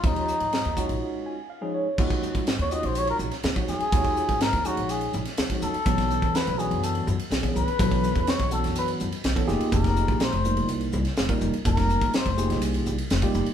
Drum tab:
CC |----------------|x---------------|----------------|----------------|
RD |xx-xxx-x--------|-x-xxx-xxx-xxx-x|xx-xxx-xxx-xxx-x|xx-xxx-xxx-xxx-x|
HH |--p---p---------|--p-p-p-p-p-p-p-|p-p-p-p-p-p-p-p-|p-p-p-p-p-p-p-p-|
SD |----o-----------|----o------oo-o-|----o------oo---|-o--o-------o---|
BD |o-----o---------|oo-o---------o--|oo-o-o-------o--|oo-o---------o--|

CC |----------------|----------------|----------------|
RD |xx-xxx-xxx-xxx-x|xx-xxx-xxx-xxx-x|xx-xxx-xxx-xxx-x|
HH |p-p-p-p-p-p-p-p-|p-p-p-p-p-p-p-p-|p-p-p-p-p-p-p-p-|
SD |----o--o----o-o-|-o--o------oo---|-o--o--o----o---|
BD |oo-o-o-------o--|oo-o---------o--|oo-o-o-------o--|